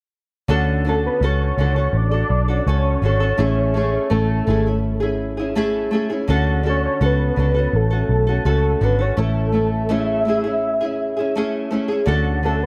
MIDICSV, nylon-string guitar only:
0, 0, Header, 1, 2, 480
1, 0, Start_track
1, 0, Tempo, 723415
1, 330, Time_signature, 4, 2, 24, 8
1, 8400, End_track
2, 0, Start_track
2, 0, Title_t, "Nylon-string guitar"
2, 0, Program_c, 0, 24
2, 320, Note_on_c, 0, 50, 83
2, 326, Note_on_c, 0, 61, 88
2, 331, Note_on_c, 0, 66, 80
2, 334, Note_on_c, 0, 69, 87
2, 554, Note_off_c, 0, 50, 0
2, 562, Note_on_c, 0, 50, 55
2, 564, Note_off_c, 0, 61, 0
2, 570, Note_off_c, 0, 66, 0
2, 572, Note_off_c, 0, 69, 0
2, 572, Note_on_c, 0, 61, 58
2, 578, Note_on_c, 0, 66, 53
2, 587, Note_on_c, 0, 69, 55
2, 805, Note_off_c, 0, 61, 0
2, 806, Note_off_c, 0, 50, 0
2, 808, Note_off_c, 0, 66, 0
2, 813, Note_on_c, 0, 61, 70
2, 814, Note_off_c, 0, 69, 0
2, 816, Note_on_c, 0, 66, 72
2, 822, Note_on_c, 0, 69, 76
2, 1046, Note_off_c, 0, 61, 0
2, 1050, Note_on_c, 0, 50, 58
2, 1053, Note_off_c, 0, 66, 0
2, 1054, Note_on_c, 0, 61, 61
2, 1056, Note_off_c, 0, 69, 0
2, 1062, Note_on_c, 0, 66, 62
2, 1066, Note_on_c, 0, 69, 64
2, 1159, Note_off_c, 0, 69, 0
2, 1167, Note_on_c, 0, 69, 52
2, 1170, Note_off_c, 0, 50, 0
2, 1172, Note_off_c, 0, 61, 0
2, 1172, Note_off_c, 0, 66, 0
2, 1179, Note_on_c, 0, 66, 44
2, 1188, Note_on_c, 0, 61, 43
2, 1395, Note_off_c, 0, 69, 0
2, 1402, Note_on_c, 0, 69, 50
2, 1410, Note_off_c, 0, 66, 0
2, 1418, Note_on_c, 0, 66, 44
2, 1419, Note_off_c, 0, 61, 0
2, 1638, Note_off_c, 0, 69, 0
2, 1646, Note_on_c, 0, 69, 49
2, 1648, Note_off_c, 0, 66, 0
2, 1656, Note_on_c, 0, 66, 46
2, 1665, Note_on_c, 0, 61, 45
2, 1766, Note_off_c, 0, 61, 0
2, 1768, Note_off_c, 0, 69, 0
2, 1770, Note_off_c, 0, 66, 0
2, 1774, Note_on_c, 0, 61, 67
2, 1778, Note_on_c, 0, 66, 68
2, 1785, Note_on_c, 0, 69, 79
2, 2004, Note_on_c, 0, 50, 53
2, 2005, Note_off_c, 0, 61, 0
2, 2013, Note_on_c, 0, 61, 52
2, 2014, Note_off_c, 0, 66, 0
2, 2018, Note_off_c, 0, 69, 0
2, 2021, Note_on_c, 0, 66, 55
2, 2027, Note_on_c, 0, 69, 60
2, 2117, Note_off_c, 0, 69, 0
2, 2125, Note_on_c, 0, 69, 54
2, 2127, Note_off_c, 0, 50, 0
2, 2131, Note_off_c, 0, 61, 0
2, 2133, Note_off_c, 0, 66, 0
2, 2141, Note_on_c, 0, 66, 52
2, 2146, Note_on_c, 0, 61, 42
2, 2235, Note_off_c, 0, 61, 0
2, 2239, Note_on_c, 0, 57, 71
2, 2243, Note_on_c, 0, 61, 77
2, 2245, Note_off_c, 0, 66, 0
2, 2247, Note_off_c, 0, 69, 0
2, 2248, Note_on_c, 0, 64, 79
2, 2256, Note_on_c, 0, 68, 88
2, 2473, Note_off_c, 0, 57, 0
2, 2481, Note_on_c, 0, 57, 57
2, 2483, Note_off_c, 0, 61, 0
2, 2489, Note_off_c, 0, 64, 0
2, 2491, Note_on_c, 0, 61, 53
2, 2493, Note_off_c, 0, 68, 0
2, 2496, Note_on_c, 0, 64, 55
2, 2501, Note_on_c, 0, 68, 64
2, 2712, Note_off_c, 0, 57, 0
2, 2716, Note_off_c, 0, 61, 0
2, 2720, Note_off_c, 0, 64, 0
2, 2720, Note_on_c, 0, 57, 77
2, 2724, Note_on_c, 0, 61, 76
2, 2728, Note_on_c, 0, 64, 73
2, 2735, Note_off_c, 0, 68, 0
2, 2956, Note_off_c, 0, 57, 0
2, 2961, Note_off_c, 0, 61, 0
2, 2964, Note_on_c, 0, 57, 61
2, 2967, Note_off_c, 0, 64, 0
2, 2969, Note_on_c, 0, 61, 59
2, 2974, Note_on_c, 0, 64, 62
2, 2985, Note_on_c, 0, 68, 68
2, 3087, Note_off_c, 0, 57, 0
2, 3088, Note_off_c, 0, 64, 0
2, 3089, Note_off_c, 0, 61, 0
2, 3096, Note_on_c, 0, 64, 47
2, 3097, Note_off_c, 0, 68, 0
2, 3103, Note_on_c, 0, 61, 39
2, 3319, Note_on_c, 0, 68, 55
2, 3326, Note_off_c, 0, 64, 0
2, 3331, Note_off_c, 0, 61, 0
2, 3334, Note_on_c, 0, 64, 53
2, 3339, Note_on_c, 0, 61, 42
2, 3557, Note_off_c, 0, 68, 0
2, 3564, Note_on_c, 0, 68, 58
2, 3572, Note_off_c, 0, 64, 0
2, 3575, Note_off_c, 0, 61, 0
2, 3579, Note_on_c, 0, 64, 51
2, 3588, Note_on_c, 0, 61, 46
2, 3681, Note_off_c, 0, 61, 0
2, 3684, Note_off_c, 0, 64, 0
2, 3685, Note_on_c, 0, 57, 77
2, 3687, Note_off_c, 0, 68, 0
2, 3689, Note_on_c, 0, 61, 83
2, 3692, Note_on_c, 0, 64, 88
2, 3698, Note_on_c, 0, 68, 89
2, 3912, Note_off_c, 0, 57, 0
2, 3920, Note_on_c, 0, 57, 62
2, 3923, Note_off_c, 0, 61, 0
2, 3926, Note_off_c, 0, 64, 0
2, 3931, Note_on_c, 0, 61, 62
2, 3934, Note_off_c, 0, 68, 0
2, 3934, Note_on_c, 0, 64, 62
2, 3942, Note_on_c, 0, 68, 65
2, 4037, Note_off_c, 0, 68, 0
2, 4045, Note_off_c, 0, 57, 0
2, 4045, Note_on_c, 0, 68, 56
2, 4048, Note_off_c, 0, 64, 0
2, 4051, Note_off_c, 0, 61, 0
2, 4056, Note_on_c, 0, 64, 55
2, 4064, Note_on_c, 0, 61, 43
2, 4163, Note_off_c, 0, 61, 0
2, 4164, Note_on_c, 0, 50, 76
2, 4168, Note_off_c, 0, 68, 0
2, 4171, Note_on_c, 0, 61, 88
2, 4173, Note_off_c, 0, 64, 0
2, 4178, Note_on_c, 0, 66, 98
2, 4179, Note_on_c, 0, 69, 89
2, 4392, Note_off_c, 0, 50, 0
2, 4398, Note_off_c, 0, 61, 0
2, 4400, Note_on_c, 0, 50, 57
2, 4406, Note_on_c, 0, 61, 56
2, 4408, Note_off_c, 0, 66, 0
2, 4415, Note_off_c, 0, 69, 0
2, 4416, Note_on_c, 0, 66, 62
2, 4422, Note_on_c, 0, 69, 60
2, 4642, Note_off_c, 0, 61, 0
2, 4645, Note_off_c, 0, 50, 0
2, 4648, Note_off_c, 0, 66, 0
2, 4650, Note_on_c, 0, 61, 70
2, 4653, Note_off_c, 0, 69, 0
2, 4656, Note_on_c, 0, 66, 74
2, 4661, Note_on_c, 0, 69, 71
2, 4883, Note_off_c, 0, 61, 0
2, 4884, Note_on_c, 0, 50, 54
2, 4891, Note_on_c, 0, 61, 55
2, 4893, Note_off_c, 0, 66, 0
2, 4896, Note_off_c, 0, 69, 0
2, 4900, Note_on_c, 0, 66, 60
2, 4905, Note_on_c, 0, 69, 62
2, 4997, Note_off_c, 0, 69, 0
2, 5005, Note_on_c, 0, 69, 51
2, 5007, Note_off_c, 0, 50, 0
2, 5010, Note_off_c, 0, 61, 0
2, 5011, Note_off_c, 0, 66, 0
2, 5019, Note_on_c, 0, 66, 48
2, 5032, Note_on_c, 0, 61, 45
2, 5237, Note_off_c, 0, 69, 0
2, 5245, Note_on_c, 0, 69, 47
2, 5251, Note_off_c, 0, 66, 0
2, 5259, Note_on_c, 0, 66, 47
2, 5261, Note_off_c, 0, 61, 0
2, 5270, Note_on_c, 0, 61, 38
2, 5478, Note_off_c, 0, 69, 0
2, 5486, Note_on_c, 0, 69, 57
2, 5490, Note_off_c, 0, 66, 0
2, 5498, Note_on_c, 0, 66, 51
2, 5500, Note_off_c, 0, 61, 0
2, 5508, Note_on_c, 0, 61, 46
2, 5600, Note_off_c, 0, 61, 0
2, 5604, Note_off_c, 0, 66, 0
2, 5606, Note_off_c, 0, 69, 0
2, 5608, Note_on_c, 0, 61, 74
2, 5612, Note_on_c, 0, 66, 74
2, 5614, Note_on_c, 0, 69, 77
2, 5844, Note_off_c, 0, 61, 0
2, 5845, Note_on_c, 0, 50, 55
2, 5851, Note_off_c, 0, 66, 0
2, 5852, Note_off_c, 0, 69, 0
2, 5852, Note_on_c, 0, 61, 57
2, 5859, Note_on_c, 0, 66, 58
2, 5866, Note_on_c, 0, 69, 58
2, 5955, Note_off_c, 0, 69, 0
2, 5963, Note_on_c, 0, 69, 47
2, 5967, Note_off_c, 0, 50, 0
2, 5968, Note_off_c, 0, 66, 0
2, 5971, Note_off_c, 0, 61, 0
2, 5976, Note_on_c, 0, 66, 46
2, 5984, Note_on_c, 0, 61, 43
2, 6078, Note_off_c, 0, 61, 0
2, 6083, Note_on_c, 0, 57, 73
2, 6086, Note_off_c, 0, 69, 0
2, 6086, Note_on_c, 0, 61, 76
2, 6090, Note_off_c, 0, 66, 0
2, 6093, Note_on_c, 0, 64, 83
2, 6310, Note_off_c, 0, 57, 0
2, 6318, Note_on_c, 0, 57, 54
2, 6320, Note_off_c, 0, 61, 0
2, 6325, Note_off_c, 0, 64, 0
2, 6328, Note_on_c, 0, 61, 53
2, 6333, Note_on_c, 0, 64, 53
2, 6553, Note_off_c, 0, 57, 0
2, 6558, Note_off_c, 0, 61, 0
2, 6561, Note_on_c, 0, 57, 81
2, 6565, Note_off_c, 0, 64, 0
2, 6566, Note_on_c, 0, 61, 75
2, 6573, Note_on_c, 0, 64, 68
2, 6577, Note_on_c, 0, 68, 80
2, 6794, Note_off_c, 0, 57, 0
2, 6802, Note_on_c, 0, 57, 57
2, 6805, Note_off_c, 0, 61, 0
2, 6812, Note_off_c, 0, 64, 0
2, 6813, Note_off_c, 0, 68, 0
2, 6813, Note_on_c, 0, 61, 55
2, 6821, Note_on_c, 0, 64, 63
2, 6829, Note_on_c, 0, 68, 59
2, 6917, Note_off_c, 0, 68, 0
2, 6925, Note_on_c, 0, 68, 54
2, 6926, Note_off_c, 0, 57, 0
2, 6931, Note_off_c, 0, 61, 0
2, 6931, Note_off_c, 0, 64, 0
2, 6939, Note_on_c, 0, 64, 41
2, 6946, Note_on_c, 0, 61, 38
2, 7162, Note_off_c, 0, 68, 0
2, 7170, Note_on_c, 0, 68, 57
2, 7175, Note_off_c, 0, 64, 0
2, 7178, Note_off_c, 0, 61, 0
2, 7184, Note_on_c, 0, 64, 44
2, 7194, Note_on_c, 0, 61, 44
2, 7401, Note_off_c, 0, 68, 0
2, 7409, Note_on_c, 0, 68, 55
2, 7414, Note_off_c, 0, 64, 0
2, 7422, Note_off_c, 0, 61, 0
2, 7422, Note_on_c, 0, 64, 52
2, 7433, Note_on_c, 0, 61, 49
2, 7529, Note_off_c, 0, 68, 0
2, 7534, Note_off_c, 0, 61, 0
2, 7534, Note_on_c, 0, 57, 72
2, 7536, Note_off_c, 0, 64, 0
2, 7542, Note_on_c, 0, 61, 90
2, 7548, Note_on_c, 0, 64, 85
2, 7550, Note_on_c, 0, 68, 78
2, 7759, Note_off_c, 0, 57, 0
2, 7767, Note_on_c, 0, 57, 60
2, 7768, Note_off_c, 0, 61, 0
2, 7771, Note_off_c, 0, 64, 0
2, 7776, Note_on_c, 0, 61, 68
2, 7778, Note_off_c, 0, 68, 0
2, 7779, Note_on_c, 0, 64, 63
2, 7786, Note_on_c, 0, 68, 58
2, 7876, Note_off_c, 0, 68, 0
2, 7884, Note_on_c, 0, 68, 57
2, 7889, Note_off_c, 0, 57, 0
2, 7892, Note_off_c, 0, 64, 0
2, 7893, Note_off_c, 0, 61, 0
2, 7899, Note_on_c, 0, 64, 46
2, 7908, Note_on_c, 0, 61, 47
2, 7996, Note_off_c, 0, 61, 0
2, 7999, Note_on_c, 0, 50, 85
2, 8004, Note_on_c, 0, 61, 84
2, 8007, Note_off_c, 0, 68, 0
2, 8008, Note_off_c, 0, 64, 0
2, 8011, Note_on_c, 0, 66, 87
2, 8017, Note_on_c, 0, 69, 90
2, 8239, Note_off_c, 0, 50, 0
2, 8247, Note_off_c, 0, 61, 0
2, 8247, Note_on_c, 0, 50, 54
2, 8250, Note_off_c, 0, 66, 0
2, 8253, Note_off_c, 0, 69, 0
2, 8256, Note_on_c, 0, 61, 54
2, 8263, Note_on_c, 0, 66, 57
2, 8268, Note_on_c, 0, 69, 62
2, 8400, Note_off_c, 0, 50, 0
2, 8400, Note_off_c, 0, 61, 0
2, 8400, Note_off_c, 0, 66, 0
2, 8400, Note_off_c, 0, 69, 0
2, 8400, End_track
0, 0, End_of_file